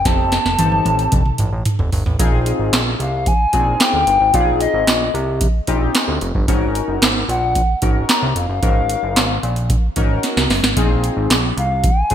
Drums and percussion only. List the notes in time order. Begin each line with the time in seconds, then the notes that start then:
0.05 kick, snare, closed hi-hat
0.32 snare, closed hi-hat
0.46 snare
0.59 closed hi-hat, high tom
0.72 high tom
0.85 closed hi-hat, high tom
0.99 closed hi-hat
1.12 kick, closed hi-hat, mid tom
1.26 mid tom
1.38 closed hi-hat, mid tom
1.65 closed hi-hat, mid tom
1.79 floor tom
1.92 floor tom, open hi-hat
2.06 floor tom
2.19 kick, closed hi-hat
2.46 closed hi-hat
2.73 snare, clap, closed hi-hat
3.00 closed hi-hat
3.26 kick, closed hi-hat
3.53 kick, closed hi-hat
3.80 snare, clap, closed hi-hat
4.07 closed hi-hat
4.34 kick, closed hi-hat
4.61 closed hi-hat
4.87 snare, clap, closed hi-hat
5.15 closed hi-hat
5.41 kick, closed hi-hat
5.67 kick, closed hi-hat
5.95 snare, clap, closed hi-hat
6.21 closed hi-hat
6.35 kick
6.48 kick, closed hi-hat
6.75 closed hi-hat
7.02 snare, clap, closed hi-hat
7.29 closed hi-hat
7.55 kick, closed hi-hat
7.82 kick, closed hi-hat
8.09 snare, clap, closed hi-hat
8.36 closed hi-hat
8.63 kick, closed hi-hat
8.89 closed hi-hat
9.16 snare, clap, closed hi-hat
9.43 closed hi-hat
9.56 closed hi-hat
9.70 kick, closed hi-hat
9.96 kick, closed hi-hat
10.23 snare, closed hi-hat
10.37 snare
10.50 snare, open hi-hat
10.64 snare
10.77 kick, closed hi-hat
11.04 closed hi-hat
11.30 snare, clap, closed hi-hat
11.58 closed hi-hat
11.84 kick, closed hi-hat
12.10 kick, closed hi-hat